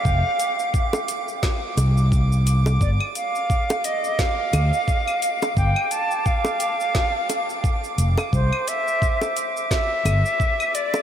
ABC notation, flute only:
X:1
M:4/4
L:1/8
Q:"Swing 16ths" 1/4=87
K:Fmix
V:1 name="Flute"
f3 z4 z | d f2 e f4 | g a f4- f z | c =e2 z e3 d |]